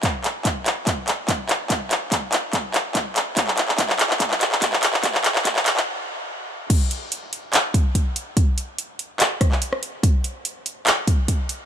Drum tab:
CC |----------------|----------------|----------------|----------------|
HH |x-x-x-x-x-x-x-x-|x-x-x-x-x-x-x-x-|x-x-x-x-x-x-x-x-|x-x-x-x---------|
CP |x-x-x-x-x-x-x-x-|x-x-x-x-x-x-x-x-|xxxxxxxxxxxxxxxx|xxxxxxxx--------|
SD |----------------|----------------|----------------|----------------|
BD |o---o---o---o---|o---o---o---o---|o---o---o---o---|o---o-----------|

CC |x---------------|----------------|----------------|
HH |x-x-x-x-x-x-x-x-|x-x-x-x-x-x-x-x-|x-x-x-x-x-x-x-x-|
CP |--------x-------|--------x--x----|--------x-------|
SD |----------------|----------r--r--|----------------|
BD |o---------o-o---|o---------o-----|o---------o-o---|